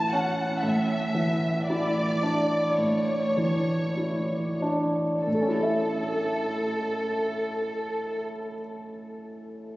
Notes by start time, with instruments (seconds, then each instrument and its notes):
Already playing: grand piano A2 E3 C#4 E4, violin section A5
0.12 grand piano C#4, violin section F#5
0.61 grand piano A2, violin section E5
1.14 grand piano E3
1.67 grand piano E4, violin section D5
2.23 grand piano D4
2.78 grand piano A2, violin section C#5
3.37 grand piano E3
3.97 grand piano E4
4.62 grand piano D4
5.24 grand piano A2, violin section A4
5.34 grand piano A3
5.41 grand piano C#4
5.48 grand piano E4
5.55 grand piano A4
5.63 grand piano E5